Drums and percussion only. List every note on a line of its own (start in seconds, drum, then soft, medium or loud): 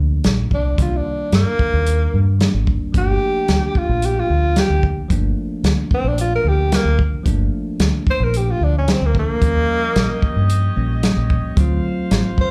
0.24 snare loud
0.24 closed hi-hat medium
0.51 kick medium
0.78 kick loud
0.78 closed hi-hat medium
1.32 snare loud
1.32 closed hi-hat medium
1.59 kick medium
1.86 closed hi-hat medium
2.40 snare loud
2.40 closed hi-hat medium
2.67 kick medium
2.94 kick loud
2.94 closed hi-hat medium
3.48 snare loud
3.48 closed hi-hat medium
3.75 kick medium
4.02 closed hi-hat medium
4.56 snare loud
4.56 closed hi-hat medium
4.83 kick medium
5.10 kick loud
5.10 closed hi-hat medium
5.64 snare loud
5.64 closed hi-hat medium
5.91 kick medium
6.18 closed hi-hat medium
6.72 snare loud
6.72 closed hi-hat medium
6.99 kick medium
7.25 kick loud
7.25 closed hi-hat medium
7.79 snare loud
7.79 closed hi-hat medium
8.07 kick medium
8.34 closed hi-hat medium
8.88 snare loud
8.88 closed hi-hat medium
9.15 kick medium
9.41 kick loud
9.41 closed hi-hat medium
9.96 snare loud
9.96 closed hi-hat medium
10.22 kick medium
10.49 closed hi-hat medium
11.03 snare loud
11.03 closed hi-hat medium
11.30 kick medium
11.57 kick loud
11.57 closed hi-hat medium
12.11 snare loud
12.11 closed hi-hat medium
12.38 kick medium